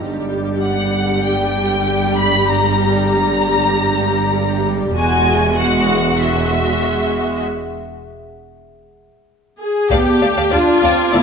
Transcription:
0.00 4.91 G1 soft
0.00 4.91 G2 soft
0.00 4.92 G3 soft
0.00 4.95 G4 soft
0.00 4.92 G4 soft
0.00 4.95 D5 soft
0.62 1.20 F#5 medium
1.24 2.17 G5 medium
2.17 2.47 B5 medium
2.48 3.09 A#5 medium
3.10 4.62 A#5 medium
4.95 7.39 E1 soft
4.95 7.39 E2 soft
4.95 5.54 G#3 soft
4.95 5.54 F#4 soft
4.95 7.44 G#4 soft
4.95 7.44 E5 soft
4.95 7.44 F#5 soft
4.95 5.54 G#5 medium
5.58 6.18 G#3 soft
5.58 6.18 F#4 soft
5.58 6.20 F#5 medium
6.19 7.41 G#3 soft
6.19 7.41 F#4 soft
6.19 7.43 E5 medium
9.59 9.88 G#4 soft
9.90 9.97 D2 soft
9.90 10.19 B3 soft
9.90 10.52 G4 soft
9.90 11.23 A4 soft
9.90 9.97 D5 soft
9.90 11.23 D5 soft
9.90 9.96 F5 soft
9.90 9.96 A5 soft
9.90 11.23 A5 soft
9.90 11.23 D6 soft
9.90 taiko soft
10.21 10.27 D2 soft
10.21 10.52 A3 soft
10.21 10.28 D5 soft
10.21 10.27 F5 soft
10.21 10.28 A5 soft
10.36 10.43 D2 soft
10.36 10.43 D5 soft
10.36 10.43 F5 soft
10.36 10.43 A5 soft
10.51 10.59 D2 soft
10.51 10.83 D4 soft
10.51 11.14 F4 medium
10.51 10.58 D5 soft
10.51 10.57 F5 soft
10.51 10.59 A5 soft
10.51 11.23 G#6 soft
10.82 10.89 D2 soft
10.82 11.14 C4 soft
10.82 10.89 D5 soft
10.82 10.89 F5 soft
10.82 10.90 A5 soft
11.12 11.20 D2 soft
11.12 11.23 B3 soft
11.12 11.23 E4 medium
11.12 11.19 D5 soft
11.12 11.19 F5 soft
11.12 11.20 A5 soft

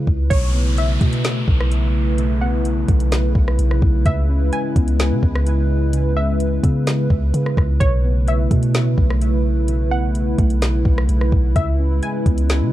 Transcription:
0.00 0.27 C#3 medium
0.00 0.27 G#3 medium
0.00 0.27 E4 medium
0.00 0.27 B4 medium
0.07 0.30 C#2 loud
0.07 kick medium
0.30 0.98 B1 loud
0.30 1.23 B2 medium
0.30 11.52 C#3 medium
0.30 4.02 A3 medium
0.30 7.77 E4 medium
0.30 11.52 B4 medium
0.30 0.74 C#5 loud
0.30 kick loud
0.30 closed hi-hat medium
0.30 downlifter medium
0.54 1.95 B3 medium
0.78 1.22 E5 medium
0.78 closed hi-hat medium
1.01 1.46 B2 loud
1.01 2.42 A3 medium
1.01 kick loud
1.01 closed hi-hat medium
1.13 closed hi-hat medium
1.24 2.17 B2 medium
1.24 snare loud
1.24 closed hi-hat medium
1.48 2.84 B1 loud
1.48 kick medium
1.60 cross-stick loud
1.72 closed hi-hat medium
2.18 3.11 B2 medium
2.18 closed hi-hat medium
2.41 3.82 B3 medium
2.41 4.02 F#5 medium
2.65 closed hi-hat medium
2.88 3.33 B1 loud
2.88 4.06 A3 medium
2.88 kick loud
2.88 closed hi-hat medium
3.00 closed hi-hat medium
3.12 4.06 B2 medium
3.12 snare loud
3.12 closed hi-hat medium
3.35 3.58 B1 loud
3.35 kick loud
3.48 cross-stick medium
3.59 3.81 B1 loud
3.59 closed hi-hat medium
3.71 cross-stick medium
3.82 4.05 B1 loud
3.82 kick medium
4.06 4.51 C#2 loud
4.06 4.98 C#3 loud
4.06 7.77 G#3 medium
4.06 4.50 E5 loud
4.06 kick loud
4.06 closed hi-hat medium
4.29 5.70 C#4 medium
4.53 4.97 G#5 medium
4.53 closed hi-hat medium
4.76 5.13 C#2 loud
4.76 6.17 B3 loud
4.76 kick loud
4.76 closed hi-hat medium
4.88 closed hi-hat medium
4.99 5.92 C#3 medium
4.99 snare loud
4.99 closed hi-hat medium
5.11 5.22 C#3 loud
5.23 6.59 C#2 loud
5.23 kick loud
5.35 cross-stick loud
5.46 closed hi-hat medium
5.93 6.86 C#3 medium
5.93 closed hi-hat medium
6.16 7.57 C#4 medium
6.16 7.30 E5 medium
6.40 closed hi-hat medium
6.63 7.08 C#3 loud
6.63 7.81 B3 medium
6.63 kick medium
6.63 closed hi-hat medium
6.87 7.81 C#3 medium
6.87 snare loud
6.87 closed hi-hat medium
7.10 7.33 C#2 loud
7.10 kick loud
7.34 7.56 C#3 loud
7.34 closed hi-hat medium
7.46 cross-stick medium
7.57 7.80 C#2 loud
7.57 kick medium
7.57 cross-stick medium
7.80 8.48 B1 loud
7.80 8.73 B2 medium
7.80 11.52 A3 medium
7.80 12.73 E4 medium
7.80 8.24 C#5 loud
7.80 kick loud
7.80 closed hi-hat medium
8.04 9.45 B3 medium
8.28 8.72 E5 medium
8.28 closed hi-hat medium
8.51 8.96 B2 loud
8.51 9.92 A3 medium
8.51 kick loud
8.51 closed hi-hat medium
8.63 closed hi-hat medium
8.74 9.67 B2 medium
8.74 snare loud
8.74 closed hi-hat medium
8.98 10.34 B1 loud
8.98 kick medium
9.10 cross-stick loud
9.22 closed hi-hat medium
9.68 10.61 B2 medium
9.68 closed hi-hat medium
9.91 11.32 B3 medium
9.91 11.52 F#5 medium
10.15 closed hi-hat medium
10.38 10.83 B1 loud
10.38 11.56 A3 medium
10.38 kick loud
10.38 closed hi-hat medium
10.50 closed hi-hat medium
10.62 11.56 B2 medium
10.62 snare loud
10.62 closed hi-hat medium
10.85 11.08 B1 loud
10.85 kick loud
10.98 cross-stick loud
11.09 11.31 B1 loud
11.09 closed hi-hat medium
11.21 cross-stick medium
11.32 11.55 B1 loud
11.32 kick medium
11.56 12.01 C#2 loud
11.56 12.73 C#3 medium
11.56 12.48 C#3 loud
11.56 12.73 G#3 medium
11.56 12.73 B4 medium
11.56 12.00 E5 loud
11.56 kick loud
11.56 closed hi-hat medium
11.79 12.73 C#4 medium
12.03 12.47 G#5 medium
12.03 closed hi-hat medium
12.26 12.63 C#2 loud
12.26 12.73 B3 medium
12.26 kick loud
12.26 closed hi-hat medium
12.38 closed hi-hat medium
12.49 12.73 C#3 medium
12.49 snare loud
12.49 closed hi-hat medium
12.61 12.72 C#3 loud

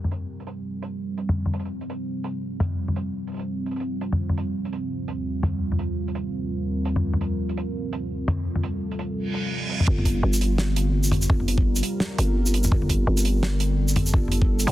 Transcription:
0.00 9.86 G3 medium
0.00 14.72 C4 medium
0.00 14.72 F4 medium
0.00 4.20 A#4 medium
0.04 mid tom soft
0.11 closed hi-hat medium
0.40 closed hi-hat soft
0.47 closed hi-hat medium
0.82 closed hi-hat medium
1.18 closed hi-hat medium
1.29 mid tom medium
1.46 mid tom soft
1.53 closed hi-hat medium
1.59 closed hi-hat medium
1.65 closed hi-hat medium
1.81 closed hi-hat soft
1.90 closed hi-hat medium
2.24 closed hi-hat medium
2.60 closed hi-hat medium
2.60 mid tom medium
2.88 mid tom soft
2.96 closed hi-hat medium
3.27 closed hi-hat soft
3.32 closed hi-hat soft
3.34 closed hi-hat soft
3.37 closed hi-hat soft
3.39 closed hi-hat medium
3.66 closed hi-hat soft
3.71 closed hi-hat soft
3.76 closed hi-hat medium
3.80 closed hi-hat medium
4.01 closed hi-hat medium
4.12 mid tom soft
4.20 9.88 D#2 medium
4.29 mid tom soft
4.37 closed hi-hat medium
4.65 closed hi-hat medium
4.73 closed hi-hat medium
5.08 closed hi-hat medium
5.43 closed hi-hat medium
5.43 mid tom medium
5.72 mid tom soft
5.76 8.16 A#4 medium
5.76 closed hi-hat medium
6.08 closed hi-hat soft
6.15 closed hi-hat medium
6.85 closed hi-hat medium
6.96 mid tom soft
7.13 mid tom soft
7.21 closed hi-hat medium
7.49 closed hi-hat medium
7.57 closed hi-hat medium
7.93 closed hi-hat medium
8.05 9.87 A4 medium
8.28 closed hi-hat medium
8.28 mid tom medium
8.56 mid tom soft
8.63 closed hi-hat medium
8.91 closed hi-hat medium
8.99 closed hi-hat medium
9.17 reverse cymbal medium
9.34 closed hi-hat medium
9.69 closed hi-hat medium
9.80 mid tom medium
9.88 10.22 G1 loud
9.88 14.72 G3 medium
9.88 kick loud
9.98 mid tom soft
10.05 kick medium
10.05 closed hi-hat medium
10.23 11.28 G1 loud
10.33 closed hi-hat soft
10.33 shaker medium
10.41 closed hi-hat medium
10.58 snare loud
10.76 closed hi-hat medium
11.04 shaker medium
11.12 closed hi-hat medium
11.12 mid tom medium
11.22 shaker medium
11.30 11.82 G1 loud
11.30 13.39 A#4 medium
11.30 kick loud
11.40 mid tom soft
11.48 closed hi-hat medium
11.58 kick loud
11.76 closed hi-hat soft
11.76 shaker medium
11.83 closed hi-hat medium
12.00 snare loud
12.18 12.70 G1 loud
12.18 closed hi-hat medium
12.46 shaker medium
12.54 closed hi-hat medium
12.64 mid tom soft
12.64 shaker medium
12.72 13.06 G1 loud
12.72 kick loud
12.82 mid tom soft
12.89 kick medium
12.89 closed hi-hat medium
13.07 14.12 G1 loud
13.17 closed hi-hat soft
13.17 shaker medium
13.25 14.72 A4 medium
13.25 closed hi-hat medium
13.43 snare loud
13.60 closed hi-hat medium
13.88 shaker medium
13.96 closed hi-hat medium
13.96 mid tom medium
14.06 shaker medium
14.14 14.66 G1 loud
14.14 kick loud
14.28 closed hi-hat medium
14.28 mid tom soft
14.42 kick loud
14.60 closed hi-hat medium
14.60 shaker medium
14.67 14.72 G2 loud
14.67 closed hi-hat medium

